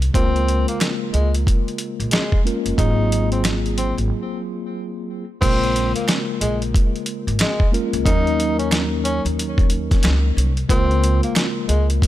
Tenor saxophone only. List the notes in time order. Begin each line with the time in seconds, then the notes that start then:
0.15 C4
0.69 A#3
1.13 G#3
2.12 G#3
2.79 D#4
3.32 C4
3.78 C4
5.41 C4
5.95 A#3
6.41 G#3
7.41 G#3
8.05 D#4
8.59 C#4
9.05 C#4
10.70 C4
11.24 A#3
11.68 G#3